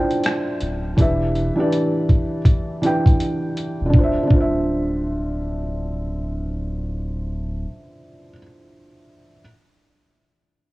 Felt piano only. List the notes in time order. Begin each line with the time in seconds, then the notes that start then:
Already playing: D3 D4 E4 F4 C5 E5 G5
0.97 E3 D4 G4 B4
1.01 E5
1.56 E3 D4 G4 B4
1.60 D5
2.81 E3 D4 G4 B4
2.86 G5
3.86 D3
3.90 D4
3.94 F4
3.99 C5
4.04 E5
4.23 D3
4.27 D4
4.32 F4
4.36 C5
4.40 E5